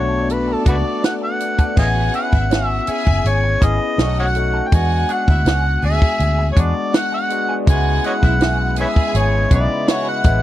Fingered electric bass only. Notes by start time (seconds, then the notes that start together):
Already playing: B1
0.66 C#2
1.77 A1
2.33 G#1
2.88 muted fingered electric bass stroke
3.07 F#1
3.24 G#1
3.62 G#1
3.98 B1
4.73 E2
5.28 D2
5.45 C#2
5.83 D2
6.20 D2
6.57 E2
7.67 C#2
8.23 B1
9.14 G#1
9.51 B1
10.24 A1